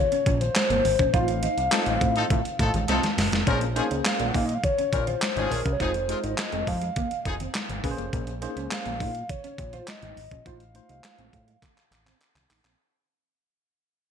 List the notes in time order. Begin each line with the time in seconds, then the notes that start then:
Already playing: C#5
0.12 C#4, closed hi-hat
0.26 A#1 C#4, kick, closed hi-hat, high conga
0.41 C5, closed hi-hat, high conga
0.55 snare, clap, closed hi-hat, muted conga
0.70 G#1 A#3, closed hi-hat, muted conga, high conga
0.85 G#1, muted clean electric guitar stroke, open hi-hat, high conga, low conga
0.99 A#1 C#4, kick, closed hi-hat
1.13 A1 A3 C4 D#4 F4 C5 F5, kick, closed hi-hat, muted conga, low conga
1.28 muted clean electric guitar stroke, closed hi-hat, muted conga
1.42 D#4, closed hi-hat, high conga
1.58 C2, closed hi-hat
1.72 F3 A3 C4 D#4 F4 A4 C5, muted clean electric guitar stroke, snare, clap, closed hi-hat
1.86 A1 D#4, closed hi-hat, muted conga
2.01 A2 C4, kick, closed hi-hat, low conga
2.16 F3 D#4 A4, closed hi-hat
2.30 A2 A3, kick, closed hi-hat, high conga
2.45 closed hi-hat, muted conga
2.59 A2 F3 D#4 A4, muted clean electric guitar stroke, kick, closed hi-hat, high conga
2.74 A1 G#3, closed hi-hat, high conga
2.88 C2 F3 C4 D#4 A4, snare, closed hi-hat, muted conga
3.03 muted clean electric guitar stroke, snare, closed hi-hat, high conga
3.18 F#1, snare, open hi-hat, high conga, low conga
3.32 F1 A3, snare, closed hi-hat
3.47 A#1 F3 A#3 C#4 G#4 A#4 C5, kick, closed hi-hat, muted conga, low conga
3.61 muted clean electric guitar stroke, closed hi-hat
3.76 F3 A#3 C#4 D#4 G#4 C5, closed hi-hat
3.91 C#2 C#4, closed hi-hat
4.05 F5, muted clean electric guitar stroke, snare, clap, closed hi-hat, muted conga
4.19 A#1 A#3, closed hi-hat, muted conga
4.28 F#5
4.34 A#2 D#4 F5, kick, open hi-hat, low conga
4.45 D#5, closed hi-hat
4.55 F5
4.64 C#5, kick, closed hi-hat, muted conga, high conga
4.78 C#4, closed hi-hat, muted conga
4.92 A#1 F3 C#4 A#4, muted clean electric guitar stroke, kick, closed hi-hat, high conga
5.07 F4 C5, closed hi-hat, high conga
5.22 snare, clap, closed hi-hat
5.36 G#1 F3 C#4 D#4 G#4, closed hi-hat, muted conga, high conga
5.51 A#1 A#4, muted clean electric guitar stroke, open hi-hat, high conga, low conga
5.65 C2 C#4, kick, closed hi-hat
5.73 C#5
5.80 F1 F3 G#3 D#4 F4 G#4 C5, kick, closed hi-hat, muted conga, low conga
5.94 closed hi-hat, muted conga
6.09 C3 G#3 D#4 F4 C5, muted clean electric guitar stroke, closed hi-hat
6.24 G#1 D#4 D#5, closed hi-hat
6.38 snare, clap, closed hi-hat, muted conga
6.52 F1 C4, closed hi-hat, muted conga
6.67 F2 F5, muted clean electric guitar stroke, kick, open hi-hat, low conga
6.81 G#3, closed hi-hat
6.96 A#3, kick, closed hi-hat, muted conga, high conga
7.11 closed hi-hat, muted conga
7.25 F1 F3 D#4 G#4, muted clean electric guitar stroke, kick, closed hi-hat, high conga
7.40 C4, closed hi-hat, high conga
7.54 muted clean electric guitar stroke, snare, clap, closed hi-hat, muted conga
7.69 G#1, closed hi-hat, muted conga, high conga
7.84 A#1 A#3 C#4 G#4 B4, kick, open hi-hat, high conga, low conga
7.91 C5
7.98 F1 A#3, closed hi-hat
8.13 A#1, kick, closed hi-hat, low conga
8.27 muted clean electric guitar stroke, closed hi-hat, muted conga
8.42 A#3 C#4 D#4 G#4 C5, closed hi-hat
8.57 C#2 C#4, closed hi-hat
8.71 F5, snare, clap, closed hi-hat, muted conga
8.85 A#1 A#3, closed hi-hat, muted conga
9.00 A#2 D#4, kick, open hi-hat, low conga
9.15 closed hi-hat
9.29 C#5, kick, closed hi-hat, muted conga, high conga
9.44 C#4, closed hi-hat, muted conga
9.58 A#1, muted clean electric guitar stroke, kick, closed hi-hat, high conga
9.73 F4 C5, closed hi-hat, high conga
9.87 D#5, snare, clap, closed hi-hat
10.02 G#1 D#4, closed hi-hat, muted conga, high conga
10.17 G#1, muted clean electric guitar stroke, open hi-hat, high conga, low conga
10.31 A#1 C#4, kick, closed hi-hat
10.45 A1 A3 D#4 F4 C5 F5, kick, closed hi-hat, low conga
10.60 closed hi-hat, muted conga
10.75 A3 D#4 F4 C5, muted clean electric guitar stroke, closed hi-hat
10.89 C2 D#4, closed hi-hat
11.04 snare, clap, closed hi-hat, muted conga
11.18 A1 C4, closed hi-hat
11.33 A2, muted clean electric guitar stroke, kick, closed hi-hat, low conga
11.48 G#3, closed hi-hat
11.62 A3, kick, clap, closed hi-hat, muted conga, high conga
11.77 clap, closed hi-hat
11.91 A1, muted clean electric guitar stroke, clap, closed hi-hat, high conga
12.06 C4, clap, closed hi-hat, high conga
12.20 muted clean electric guitar stroke, clap, closed hi-hat, muted conga
12.35 C2, clap, closed hi-hat, muted conga, high conga
12.49 A1 D#4, clap, open hi-hat, high conga, low conga
12.64 A#1 C4, clap, closed hi-hat